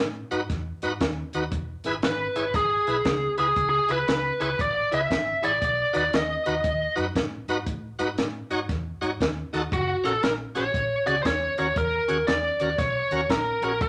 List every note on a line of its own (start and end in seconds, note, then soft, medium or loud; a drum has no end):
0.00 0.20 A2 medium
0.31 0.44 G#2 medium
0.31 0.41 D#4 medium
0.31 0.41 F#4 medium
0.31 0.41 B4 medium
0.31 closed hi-hat medium
0.50 0.71 E2 medium
0.50 kick loud
0.50 snare soft
0.50 closed hi-hat medium
0.82 0.95 G#2 medium
0.82 0.92 D#4 medium
0.82 0.92 F#4 medium
0.82 0.92 B4 medium
0.82 closed hi-hat medium
1.01 1.22 D#2 medium
1.01 kick medium
1.01 snare loud
1.01 closed hi-hat medium
1.33 1.46 D#2 medium
1.33 1.43 D#4 medium
1.33 1.43 F#4 medium
1.33 1.44 B4 medium
1.33 closed hi-hat medium
1.52 1.73 E1 medium
1.52 kick medium
1.52 closed hi-hat medium
1.84 1.97 G#1 medium
1.84 1.95 E4 medium
1.84 1.95 G#4 medium
1.84 1.95 B4 medium
1.84 snare soft
1.84 closed hi-hat medium
2.02 2.25 G#1 loud
2.02 2.55 B4 medium
2.02 snare loud
2.02 closed hi-hat medium
2.36 2.48 G#1 medium
2.36 2.45 E4 medium
2.36 2.45 G#4 medium
2.36 2.45 C#5 medium
2.36 closed hi-hat medium
2.54 2.75 G#1 medium
2.54 3.35 G#4 medium
2.54 kick loud
2.54 snare soft
2.54 closed hi-hat medium
2.87 2.99 B1 medium
2.87 2.97 E4 medium
2.87 2.96 G#4 medium
2.87 2.97 B4 medium
2.87 closed hi-hat medium
3.05 3.26 C#2 medium
3.05 kick medium
3.05 snare loud
3.05 closed hi-hat medium
3.38 3.51 C#2 medium
3.38 3.47 E4 medium
3.38 3.47 G#4 medium
3.38 3.68 G#4 medium
3.38 3.47 B4 medium
3.38 closed hi-hat medium
3.56 3.78 C#2 medium
3.56 kick loud
3.56 closed hi-hat medium
3.69 3.90 G#4 medium
3.89 4.01 C#2 medium
3.89 3.98 E4 medium
3.89 3.98 G#4 medium
3.89 3.99 B4 medium
3.89 4.08 B4 loud
3.89 closed hi-hat medium
4.08 4.29 C#2 medium
4.08 4.41 B4 medium
4.08 snare loud
4.08 closed hi-hat medium
4.40 4.53 C#2 medium
4.40 4.50 E4 medium
4.40 4.50 G#4 medium
4.40 4.61 B4 medium
4.40 4.50 C#5 medium
4.40 closed hi-hat medium
4.59 4.80 A1 medium
4.59 4.90 D5 loud
4.59 kick medium
4.59 closed hi-hat medium
4.91 5.04 C#2 medium
4.91 5.01 E4 medium
4.91 5.01 G#4 medium
4.91 5.01 B4 medium
4.91 5.44 E5 loud
4.91 closed hi-hat medium
5.11 5.32 G#1 loud
5.11 kick medium
5.11 snare loud
5.11 closed hi-hat medium
5.42 5.56 A1 medium
5.42 5.52 E4 medium
5.42 5.52 G#4 medium
5.42 5.52 C#5 medium
5.42 5.63 D5 medium
5.42 closed hi-hat medium
5.62 5.83 B1 medium
5.62 5.96 D5 medium
5.62 kick medium
5.62 closed hi-hat medium
5.93 6.07 D#2 medium
5.93 6.03 D#4 medium
5.93 6.03 F#4 medium
5.93 6.03 B4 medium
5.93 6.15 D5 loud
5.93 closed hi-hat medium
6.13 6.34 D#2 medium
6.13 6.94 D#5 medium
6.13 snare loud
6.13 closed hi-hat medium
6.46 6.58 D#2 medium
6.46 6.55 D#4 medium
6.46 6.55 F#4 medium
6.46 6.55 B4 medium
6.46 closed hi-hat medium
6.64 6.85 D#2 medium
6.64 kick loud
6.64 closed hi-hat medium
6.96 7.09 F#2 medium
6.96 7.05 D#4 medium
6.96 7.05 F#4 medium
6.96 7.05 B4 medium
6.96 closed hi-hat soft
7.15 7.36 A2 medium
7.15 kick medium
7.15 snare loud
7.15 closed hi-hat medium
7.48 7.60 G#2 medium
7.48 7.57 D#4 medium
7.48 7.58 F#4 medium
7.48 7.58 B4 loud
7.48 closed hi-hat medium
7.66 7.88 A2 medium
7.66 kick medium
7.66 closed hi-hat medium
7.99 8.11 G#2 medium
7.99 8.08 D#4 medium
7.99 8.08 F#4 medium
7.99 8.08 B4 medium
7.99 closed hi-hat medium
8.18 8.39 A2 medium
8.18 snare loud
8.18 closed hi-hat medium
8.50 8.63 G#2 medium
8.50 8.60 D#4 medium
8.50 8.60 F#4 medium
8.50 8.60 C#5 medium
8.50 closed hi-hat medium
8.69 8.90 E2 medium
8.69 kick loud
8.69 snare soft
8.69 closed hi-hat medium
9.01 9.14 G#2 medium
9.01 9.11 D#4 medium
9.01 9.11 F#4 medium
9.01 9.11 C#5 medium
9.01 closed hi-hat medium
9.21 9.41 D#2 loud
9.21 kick medium
9.21 snare loud
9.21 closed hi-hat medium
9.53 9.65 D#2 medium
9.53 9.62 D#4 medium
9.53 9.62 F#4 medium
9.53 9.62 A4 medium
9.53 snare soft
9.53 closed hi-hat medium
9.72 9.93 F#1 medium
9.72 10.03 F#4 medium
9.72 kick loud
9.72 closed hi-hat medium
10.04 10.16 A#1 medium
10.04 10.13 C#4 medium
10.04 10.13 F#4 medium
10.04 10.23 A4 medium
10.04 10.13 A#4 medium
10.04 snare soft
10.04 closed hi-hat medium
10.23 10.44 A#1 medium
10.23 10.32 A#4 medium
10.23 snare loud
10.23 closed hi-hat medium
10.55 10.68 A#1 medium
10.55 10.64 C#4 medium
10.55 10.64 F#4 medium
10.55 10.64 G#4 medium
10.55 11.04 C#5 medium
10.55 snare soft
10.55 closed hi-hat medium
10.74 10.95 A#1 medium
10.74 kick medium
10.74 closed hi-hat medium
11.06 11.19 C#2 medium
11.06 11.15 C#4 medium
11.06 11.15 F#4 medium
11.06 11.15 G#4 medium
11.06 11.21 D5 medium
11.06 closed hi-hat medium
11.23 11.46 E2 medium
11.23 11.26 C5 medium
11.23 11.56 C#5 loud
11.23 kick medium
11.23 snare loud
11.23 closed hi-hat medium
11.58 11.70 D#2 medium
11.58 11.67 C#4 medium
11.58 11.67 F#4 medium
11.58 11.67 A#4 medium
11.58 11.76 C#5 medium
11.58 closed hi-hat medium
11.76 11.97 E2 medium
11.76 12.25 A#4 medium
11.76 kick loud
11.76 closed hi-hat medium
12.08 12.21 D#2 medium
12.08 12.18 C#4 medium
12.08 12.18 F#4 medium
12.08 12.18 G#4 medium
12.08 closed hi-hat medium
12.27 12.48 E2 medium
12.27 12.79 D5 medium
12.27 snare loud
12.27 closed hi-hat medium
12.60 12.72 D#2 medium
12.60 12.69 C#4 medium
12.60 12.70 F#4 medium
12.60 12.70 A#4 medium
12.60 closed hi-hat medium
12.78 13.00 B1 medium
12.78 13.32 C#5 loud
12.78 kick loud
12.78 snare soft
12.78 closed hi-hat medium
13.11 13.23 D#2 medium
13.11 13.21 C#4 medium
13.11 13.21 F#4 medium
13.11 13.21 A#4 medium
13.11 closed hi-hat medium
13.30 13.51 A#1 medium
13.30 13.63 A#4 loud
13.30 kick medium
13.30 snare loud
13.30 closed hi-hat medium
13.61 13.82 A#1 medium
13.61 13.72 C#4 medium
13.61 13.72 F#4 medium
13.61 13.72 G#4 medium
13.61 13.82 A#4 medium
13.61 closed hi-hat medium
13.81 13.89 B1 loud
13.81 13.89 B4 medium
13.81 kick loud
13.81 closed hi-hat medium